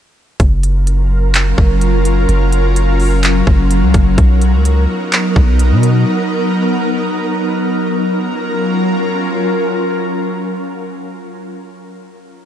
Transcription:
0.40 808-style bass F#1, ambient pad F#3 C#4 F4 A#4, kick, closed hi-hat
0.63 closed hi-hat
0.87 closed hi-hat
1.34 clap, closed hi-hat
1.58 808-style bass F#1, kick
1.81 closed hi-hat
2.05 closed hi-hat
2.29 808-style bass F#1, closed hi-hat
2.52 closed hi-hat
2.76 closed hi-hat
3.00 open hi-hat
3.23 clap, closed hi-hat
3.47 808-style bass F#1, kick
3.71 closed hi-hat
3.82 808-style bass C#2
3.94 808-style bass F#1, kick, closed hi-hat
4.18 808-style bass B1, ambient pad B3 D#4 A#4, kick, closed hi-hat
4.41 closed hi-hat
4.53 808-style bass C#2
4.65 closed hi-hat
5.12 clap, closed hi-hat
5.36 808-style bass B1, kick
5.59 closed hi-hat
5.71 808-style bass B2
5.83 closed hi-hat
7.96 ambient pad F#3 C#4 F4 A#4

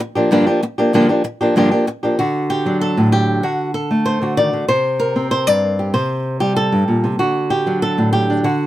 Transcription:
0.00 muted nylon-string guitar stroke
0.15 nylon-string guitar F3 A#3 D4 G4
0.31 nylon-string guitar G2 D3 F3 A#3 D4 G4
0.47 nylon-string guitar F3 A#3 D4 G4
0.63 muted nylon-string guitar stroke
0.78 nylon-string guitar F3 A#3 D4 G4
0.93 nylon-string guitar G2 D3 F3 A#3 D4 G4
1.09 nylon-string guitar F3 A#3 D4 G4
1.24 muted nylon-string guitar stroke
1.41 nylon-string guitar F3 A#3 D4 G4
1.56 nylon-string guitar G2 D3 F3 A#3 D4 G4
1.71 nylon-string guitar F3 A#3 D4 G4
1.87 muted nylon-string guitar stroke
2.03 nylon-string guitar F3 A#3 D4 G4
2.19 nylon-string guitar D3 F#4
2.50 nylon-string guitar G4
2.66 nylon-string guitar F#3 D4
2.81 nylon-string guitar A4
2.97 nylon-string guitar A2 D4
3.12 nylon-string guitar G4
3.43 nylon-string guitar D3 F#4
3.74 nylon-string guitar A4
3.91 nylon-string guitar A3
4.06 nylon-string guitar C5
4.22 nylon-string guitar D3 F#4
4.37 nylon-string guitar D#3 D5
4.53 nylon-string guitar D3
4.68 nylon-string guitar C3 C5
5.00 nylon-string guitar A#4
5.16 nylon-string guitar C4
5.31 nylon-string guitar C5
5.47 nylon-string guitar G2 D5
5.79 nylon-string guitar G4
5.94 nylon-string guitar C3 C5
6.40 nylon-string guitar G3 G4
6.56 nylon-string guitar A4
6.72 nylon-string guitar G2
6.88 nylon-string guitar A#2
7.04 nylon-string guitar C3
7.19 nylon-string guitar D3 F#4
7.50 nylon-string guitar G4
7.66 nylon-string guitar F#3 D4
7.82 nylon-string guitar A4
7.98 nylon-string guitar A2 D4
8.13 nylon-string guitar G4
8.30 nylon-string guitar D4
8.44 nylon-string guitar D3 F#4

